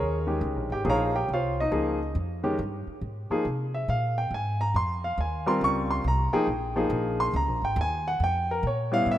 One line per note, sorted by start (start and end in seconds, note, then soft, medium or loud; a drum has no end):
0.00 0.40 D#2 medium
0.00 0.26 C#4 medium
0.00 0.39 G#4 medium
0.00 0.40 A#4 medium
0.00 0.39 C#5 medium
0.27 0.82 D#3 soft
0.27 0.82 G#3 medium
0.27 0.82 C#4 soft
0.27 0.72 G4 medium
0.41 0.56 C#2 medium
0.56 0.69 A#1 soft
0.70 0.84 G#1 medium
0.70 0.86 G4 medium
0.70 0.85 G5 medium
0.84 1.27 A#1 medium
0.84 1.11 F3 medium
0.84 1.11 A#3 medium
0.84 1.11 D#4 medium
0.84 1.11 G#4 medium
0.89 1.15 A#4 medium
0.89 1.15 C#5 medium
0.89 1.16 F5 medium
0.89 1.15 A#5 medium
1.16 1.29 G4 medium
1.16 1.29 G5 medium
1.29 1.70 C2 medium
1.34 1.59 F4 medium
1.34 1.59 C5 medium
1.34 1.59 C#5 medium
1.34 1.59 F5 medium
1.60 1.70 D#4 medium
1.60 2.13 D#5 medium
1.71 2.14 C#2 medium
1.71 1.97 F3 medium
1.71 1.98 A#3 medium
1.71 1.98 D#4 medium
1.71 1.98 G#4 medium
2.15 2.57 F2 medium
2.44 2.57 D#3 medium
2.44 2.57 G#3 medium
2.44 2.57 C#4 medium
2.44 2.57 G4 medium
2.59 2.85 G2 medium
2.87 muted upright bass stroke soft
3.01 3.28 G#2 medium
3.30 3.44 F3 medium
3.30 3.44 A#3 medium
3.30 3.44 D#4 medium
3.30 3.44 G#4 medium
3.30 muted upright bass stroke soft
3.45 3.87 C3 medium
3.74 3.88 E5 medium
3.88 4.30 A#2 medium
3.88 4.17 F5 medium
4.18 4.31 G5 medium
4.31 4.73 G#2 medium
4.31 4.61 G#5 medium
4.61 4.74 A#5 medium
4.74 5.16 F2 medium
4.74 5.03 C6 medium
5.04 5.18 F5 medium
5.18 5.60 D#2 medium
5.18 5.47 G#5 medium
5.46 6.01 G3 medium
5.46 6.01 C4 medium
5.46 6.02 F4 medium
5.46 6.02 A#4 medium
5.46 5.61 C6 medium
5.61 6.03 C#2 medium
5.61 5.90 C#6 loud
5.91 6.04 C6 medium
6.04 6.31 C2 medium
6.04 6.34 A#5 medium
6.33 6.46 F3 medium
6.33 6.46 A#3 medium
6.33 6.46 D#4 medium
6.33 6.46 G#4 medium
6.33 6.73 G5 medium
6.47 6.89 A#1 medium
6.76 7.31 F3 medium
6.76 7.31 A#3 medium
6.76 7.31 D#4 medium
6.76 7.31 G#4 medium
6.90 7.32 A#1 medium
7.20 7.34 C6 medium
7.33 7.48 C#2 medium
7.33 7.63 A#5 medium
7.48 7.61 A#1 soft
7.62 7.75 G#1 medium
7.62 7.78 G5 medium
7.76 8.18 D#2 loud
7.81 8.07 G#5 loud
8.08 8.21 F#5 medium
8.20 8.62 F2 medium
8.20 8.50 G5 loud
8.51 8.64 A#4 medium
8.63 9.05 A#2 medium
8.67 8.93 C#5 medium
8.92 9.18 G3 medium
8.92 9.18 B3 medium
8.92 9.18 C#4 medium
8.92 9.18 E4 medium
8.92 9.07 F5 loud
9.06 9.18 A2 medium
9.11 9.18 E5 loud